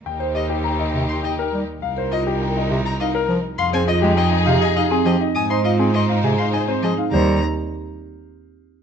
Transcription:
<<
  \new Staff \with { instrumentName = "Grand piano" } { \time 3/4 \key ees \major \tempo 4 = 102 g''16 c''16 ees''16 g'16 bes''16 ees''16 r8 g''16 bes'16 r8 | f''16 c''16 ees''16 g'16 g''16 ees''16 r8 f''16 bes'16 r8 | f''16 c''16 ees''16 g'16 g''16 ees''16 f''16 ees''16 f''16 aes'16 g'16 ees''16 | aes''16 ees''16 f''16 aes'16 c'''16 f''16 aes''16 f''16 aes''16 c''16 aes'16 f''16 |
c''8 r2 r8 | }
  \new Staff \with { instrumentName = "Violin" } { \time 3/4 \key ees \major r8 ees''16 r4 c'''16 ees''16 r8. | r8 ees''16 r4 bes''16 ees''16 r8. | c'''16 aes''16 ees''16 r16 ees''16 r8 aes''16 ees''16 r16 ees''16 r16 | ees'''16 c'''16 ees''16 r16 ees''16 r8 c'''16 ees''16 r16 ees''16 r16 |
bes''8 r2 r8 | }
  \new Staff \with { instrumentName = "Marimba" } { \time 3/4 \key ees \major r16 c''16 g'16 r4 r16 ees'16 r8. | r16 bes'16 f'16 r4 r16 ees'16 r8. | r16 aes'16 f'16 r8. g'16 r16 ees'16 c'16 r16 ees'16 | r16 c''16 f'16 r8. aes'16 r16 ees'16 c'16 r16 ees'16 |
g'8 r2 r8 | }
  \new Staff \with { instrumentName = "String section" } { \time 3/4 \key ees \major <ees' g'>2~ <ees' g'>8. r16 | <ees' bes'>2~ <ees' bes'>8. r16 | <ees' aes'>2~ <ees' aes'>8. r16 | <ees' c''>2~ <ees' c''>8. r16 |
r2. | }
  \new Staff \with { instrumentName = "Bass clarinet" } { \clef bass \time 3/4 \key ees \major r4. c16 r8. g16 r16 | r4. c16 r8. f16 r16 | r16 c'16 r16 aes16 r8 c16 r8. f16 r16 | r16 ees'16 r16 c'16 r8 c16 r8. f16 r16 |
g8 r2 r8 | }
  \new Staff \with { instrumentName = "Cello" } { \clef bass \time 3/4 \key ees \major ees,2. | c,2. | f,2. | aes,2. |
ees,8 r2 r8 | }
>>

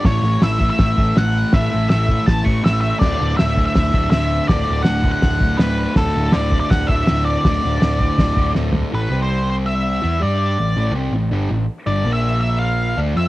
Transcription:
<<
  \new Staff \with { instrumentName = "Lead electric guitar" } { \time 4/4 \key a \mixolydian \tempo 4 = 162 cis''4 e''8. e''4~ e''16 fis''4 | e''4 e''4 a''8 cis'''8 e''8 e''8 | d''4 e''8. e''4~ e''16 e''4 | d''4 fis''8. fis''4~ fis''16 b'4 |
a'4 d''8. d''16 fis''8 e''4 d''8~ | d''2. r4 | b'8. c''8. c''8 e''4. d''8~ | d''4. r2 r8 |
d''8. e''8. e''8 f''4 r8 e''8 | }
  \new Staff \with { instrumentName = "Distorted electric guitar" } { \clef bass \time 4/4 \key a \mixolydian <a, e a>8 <e a>8 <a, e a>8 <e a>4 <e a>8 <a, e a>4 | <a, e a>8 <e a>8 <a, e a>8 <e a>4 <e a>8 <a, e a>4 | <d, a, d>8 <a, d>8 <d, a, d>8 <a, d>4 <a, d>8 <d, a, d>4 | <d, a, d>8 <a, d>8 <d, a, d>8 <a, d>4 <a, d>8 <d, a, d>4 |
<d, a, d>8 <a, d>8 <d, a, d>8 <a, d>4 <a, d>8 <d, a, d>4 | <d, a, d>8 <a, d>8 <d, a, d>8 <a, d>4 <a, d>8 <d, a, d>4 | <a, e a>8 <c g c'>2~ <c g c'>8 <e b e'>8 <g d' g'>8~ | <g d' g'>8 <a, e>8 <a, e a>8 <c g c'>8 <a, e>8 <g, d g>8 <a, e>8 r8 |
<g, d g>8 <bes, f bes>2~ <bes, f bes>8 <d a d'>8 <f c' f'>8 | }
  \new Staff \with { instrumentName = "Picked electric bass" } { \clef bass \time 4/4 \key a \mixolydian a,,8 a,,8 a,,4 a,,8 a,,8 a,,4 | a,,8 a,,8 a,,4 a,,8 a,,8 a,,4 | d,,8 d,,8 d,,4 d,,8 d,,8 d,,4 | d,,8 d,,8 d,,4 d,,8 d,,8 d,,4 |
d,,8 d,,8 d,,4 d,,8 d,,8 d,,4 | d,,8 d,,8 d,,4 d,,8 d,,8 d,,4 | a,,8 c,2~ c,8 e,8 g,8~ | g,8 a,,8 a,,8 c,8 a,,8 g,,8 a,,8 r8 |
g,,8 bes,,2~ bes,,8 d,8 f,8 | }
  \new DrumStaff \with { instrumentName = "Drums" } \drummode { \time 4/4 <hho bd sn>4 <hho sn>8 bd8 <hho bd sn>8 bd8 <hho sn>4 | <hho bd sn>4 <hho sn>8 bd8 <hho bd sn>8 bd8 <hho sn>4 | <cymc bd sn>4 <hho sn>8 bd8 <hho bd sn>8 bd8 <hho sn>4 | <hho bd sn>4 <hho sn>8 bd8 <hho bd sn>8 bd8 <hho sn>4 |
<hho bd sn>4 <hho sn>8 bd8 <hho bd sn>8 bd8 <hho sn>4 | <hho bd sn>4 <hho sn>8 bd8 <hho bd sn>8 bd8 sn8 tomfh8 | r4 r4 r4 r4 | r4 r4 r4 r4 |
r4 r4 r4 r4 | }
>>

